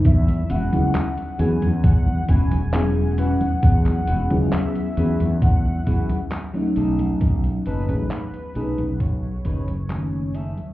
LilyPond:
<<
  \new Staff \with { instrumentName = "Soft synth lead" } { \time 4/4 \key e \major \tempo 4 = 67 e''8 fis''4 gis''8 fis''8 gis''4 fis''8~ | fis''4 e''4 fis''4 r4 | r8 b'4. cis''4. e''8 | }
  \new Staff \with { instrumentName = "Clean electric guitar" } { \time 4/4 \key e \major r8 <cis' e' fis' gis'>16 r8. <cis' e' fis' gis'>16 r8. <cis' e' fis' gis'>16 r8. <cis' e' fis' b'>16 r16 | r8 <cis' e' fis' gis'>16 r8. <cis' e' fis' gis'>16 r8. <cis' e' fis' gis'>16 r8. <cis' dis' gis' a'>8~ | <cis' dis' gis' a'>8 <cis' dis' gis' a'>16 r8. <cis' dis' gis' a'>16 r8. <cis' dis' gis' b'>16 r8. <cis' dis' gis' a'>16 r16 | }
  \new Staff \with { instrumentName = "FM electric piano" } { \time 4/4 \key e \major r8. <fis b cis' e' gis'>16 r8 <fis b cis' e' gis'>16 r4 r16 <fis b cis' e' gis'>4~ | <fis b cis' e' gis'>8. <fis b cis' e' gis'>8. <fis b cis' e' gis'>16 r8. <fis b cis' e' gis'>16 r8 <fis a cis' dis'>8.~ | <fis a cis' dis'>8. <fis a cis' dis' gis'>16 r8 <fis a cis' dis' gis'>16 r4 r16 <dis fis a cis' gis''>4 | }
  \new Staff \with { instrumentName = "Fretless electric bass" } { \clef bass \time 4/4 \key e \major e,8 e,,16 cis,16 r8 e,16 e,8. e,,4~ e,,16 r16 | e,8 e,,16 cis,16 r8 e,16 e,8. r4 b,,8 | b,,8 fis,,16 a,,16 r8 b,,16 b,,8. fis,,4~ fis,,16 r16 | }
  \new DrumStaff \with { instrumentName = "Drums" } \drummode { \time 4/4 <cgho hh bd>16 <cgho hh>16 hh16 <cgho hh>16 <hc cgho hh>16 <cgho hh>16 hh16 <cgho hh>16 <cgho hh bd>16 cgho16 <hh bd>16 <cgho hh>16 <hc cgho hh>16 cgho16 hh16 <cgho hh>16 | <cgho hh bd>16 <hc cgho hh>16 hh16 <cgho hh>16 <hc cgho hh>16 <cgho hh>16 hh16 <cgho hh>16 <cgho hh bd>16 cgho16 <hh bd>16 <cgho hh>16 <hc cgho hh>16 cgho16 hh16 <cgho hh>16 | <cgho hh bd>16 <cgho hh>16 hh16 <cgho hh>16 <hc cgho hh>16 <cgho hh>16 hh16 <cgho hh>16 <cgho hh bd>16 cgho16 <hh bd>16 <cgho hh>16 <hc cgho hh>16 cgho16 hh16 <cgho hh>16 | }
>>